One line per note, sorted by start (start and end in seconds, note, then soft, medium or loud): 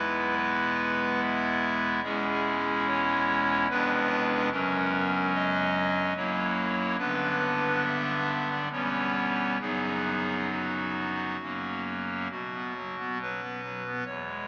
0.00 2.01 E1 medium
0.00 2.01 E2 medium
0.00 2.01 G#3 medium
0.00 2.01 B3 medium
0.00 2.01 E4 medium
0.00 0.35 B4 loud
0.37 1.20 B4 loud
1.22 2.01 E5 loud
2.03 3.67 E1 medium
2.03 3.67 E2 medium
2.03 3.67 G#3 medium
2.03 3.67 C#4 medium
2.03 3.67 E4 medium
2.03 2.86 G#4 loud
2.87 3.68 C#5 loud
3.70 4.49 F1 medium
3.70 4.49 F2 medium
3.70 4.49 G#3 medium
3.70 4.49 B3 medium
3.70 4.49 D4 medium
3.70 4.49 B4 loud
4.51 6.13 F#1 medium
4.51 6.13 F#2 medium
4.51 6.13 F#3 medium
4.51 6.13 C#4 medium
4.51 5.32 A#4 loud
5.35 6.14 D#5 loud
6.16 6.96 F#1 medium
6.16 6.96 F#2 medium
6.16 6.96 F#3 medium
6.16 6.96 A#3 medium
6.16 6.96 E4 soft
6.16 6.96 C#5 medium
6.98 8.68 G1 medium
6.98 8.68 G2 medium
6.98 8.68 D3 medium
6.98 8.68 B3 medium
6.98 8.68 D4 medium
6.98 7.83 B4 loud
7.84 8.48 E5 loud
8.50 8.69 D5 medium
8.72 9.58 E1 medium
8.72 9.57 E2 medium
8.72 9.57 G3 soft
8.72 9.58 B3 soft
8.72 9.58 C#4 soft
8.72 9.58 C#5 loud
9.61 11.37 F#1 medium
9.61 11.37 F#2 medium
9.61 11.37 F#3 soft
9.61 11.37 B3 soft
9.61 11.37 D#4 soft
9.61 10.49 G#4 medium
10.51 11.81 F#4 medium
11.42 12.28 F#1 medium
11.42 12.28 F#2 medium
11.42 12.28 F#3 soft
11.42 12.28 A#3 soft
11.42 12.28 C#4 soft
12.30 14.03 B1 medium
12.30 14.02 B2 medium
12.30 13.18 F#4 medium
12.53 12.73 B3 medium
12.76 12.96 F#3 medium
12.99 13.18 B3 soft
13.22 13.41 F#3 medium
13.22 14.05 B4 loud
13.42 13.61 B3 soft
13.64 13.83 F#3 medium
13.86 14.04 B3 soft
14.05 14.48 E1 medium
14.05 14.48 E2 medium
14.05 14.48 C#5 loud
14.27 14.46 G#3 soft